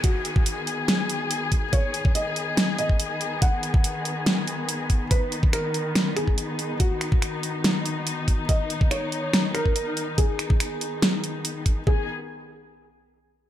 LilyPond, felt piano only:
\new Staff \with { instrumentName = "Felt piano" } { \time 4/4 \key gis \minor \tempo 4 = 142 fis'1 | cis''8 r8 dis''4. dis''4. | fis''1 | b'8 r8 ais'4. gis'4. |
fis'1 | dis''8 r8 cis''4. ais'4. | gis'1 | gis'8 r2. r8 | }